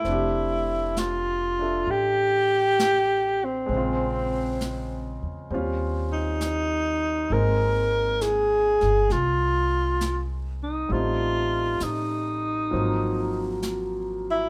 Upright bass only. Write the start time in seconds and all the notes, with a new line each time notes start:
0.05 F1
1.87 A1
3.69 A#1
5.23 E2
5.50 D#2
7.30 G#1
8.83 G1
9.11 C2
10.90 A1
11.81 A1
12.73 G#1